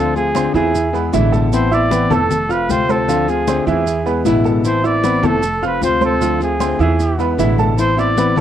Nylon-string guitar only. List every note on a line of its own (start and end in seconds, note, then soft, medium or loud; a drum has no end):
0.00 0.14 D3 medium
0.00 0.15 A3 medium
0.00 0.15 C4 medium
0.00 0.15 F4 medium
0.16 0.34 A3 soft
0.16 0.35 C4 soft
0.16 0.35 F4 soft
0.34 0.54 D3 medium
0.34 0.54 A3 medium
0.34 0.55 C4 medium
0.34 0.53 F4 medium
0.55 0.74 A3 soft
0.55 0.74 C4 soft
0.55 0.73 F4 medium
0.74 muted nylon-string guitar stroke medium
0.93 1.12 G#3 soft
0.93 1.13 B3 soft
0.93 1.12 E4 soft
1.12 1.51 B2 medium
1.12 1.51 D3 medium
1.12 1.52 G#3 medium
1.12 1.52 B3 medium
1.12 1.52 E4 medium
1.52 1.71 E3 medium
1.52 1.72 B3 medium
1.52 1.71 C4 medium
1.52 1.70 E4 medium
1.72 1.91 B3 soft
1.72 1.90 C4 soft
1.72 1.91 E4 medium
1.91 2.10 E3 medium
1.91 2.11 B3 medium
1.91 2.10 C4 medium
1.91 2.09 E4 medium
2.10 2.30 B3 soft
2.10 2.30 C4 soft
2.10 2.29 E4 soft
2.30 muted nylon-string guitar stroke medium
2.49 2.69 A3 soft
2.49 2.69 C4 soft
2.49 2.68 F4 medium
2.69 3.08 C3 medium
2.69 3.08 A3 medium
2.69 3.08 C4 medium
2.69 3.09 F4 medium
3.08 3.27 D3 medium
3.08 3.27 A3 medium
3.08 3.28 C4 medium
3.08 3.27 F4 medium
3.28 3.48 A3 soft
3.28 3.47 C4 soft
3.28 3.47 F4 medium
3.48 3.66 D3 medium
3.48 3.67 A3 medium
3.48 3.67 C4 medium
3.48 3.66 F4 medium
3.67 3.87 A3 soft
3.67 3.86 C4 soft
3.67 3.86 F4 soft
3.87 muted nylon-string guitar stroke medium
4.06 4.25 G#3 soft
4.06 4.26 B3 soft
4.06 4.25 E4 soft
4.25 4.64 B2 medium
4.25 4.64 D3 medium
4.25 4.64 G#3 medium
4.25 4.64 B3 medium
4.25 4.65 E4 medium
4.64 4.83 E3 medium
4.64 4.84 B3 medium
4.64 4.84 C4 medium
4.64 4.83 E4 medium
4.85 5.04 B3 soft
4.85 5.03 C4 soft
4.85 5.03 E4 medium
5.04 5.23 E3 medium
5.04 5.24 B3 medium
5.04 5.23 C4 medium
5.04 5.23 E4 medium
5.24 5.43 B3 soft
5.24 5.43 C4 soft
5.24 5.43 E4 medium
5.44 muted nylon-string guitar stroke medium
5.63 5.81 A3 soft
5.63 5.82 C4 soft
5.63 5.82 F4 medium
5.81 6.20 C3 medium
5.81 6.21 A3 medium
5.81 6.21 C4 medium
5.81 6.21 F4 medium
6.21 6.40 D3 medium
6.21 6.40 A3 medium
6.21 6.41 C4 medium
6.21 6.39 F4 medium
6.41 6.59 A3 soft
6.41 6.60 C4 soft
6.41 6.60 F4 medium
6.59 6.79 D3 medium
6.59 6.79 A3 medium
6.59 6.79 C4 medium
6.59 6.78 F4 medium
6.79 7.00 A3 soft
6.79 6.99 C4 soft
6.79 6.98 F4 medium
6.99 muted nylon-string guitar stroke medium
7.19 7.37 G#3 soft
7.19 7.38 B3 soft
7.19 7.38 E4 medium
7.37 7.77 B2 medium
7.37 7.76 D3 medium
7.37 7.77 G#3 medium
7.37 7.77 B3 medium
7.37 7.78 E4 medium
7.77 7.96 E3 medium
7.77 7.97 B3 medium
7.77 7.97 C4 medium
7.77 7.96 E4 medium
7.97 8.17 B3 soft
7.97 8.16 C4 soft
7.97 8.16 E4 medium
8.16 8.36 E3 medium
8.16 8.36 B3 medium
8.16 8.36 C4 medium
8.16 8.35 E4 medium
8.36 8.41 B3 soft
8.36 8.41 E4 medium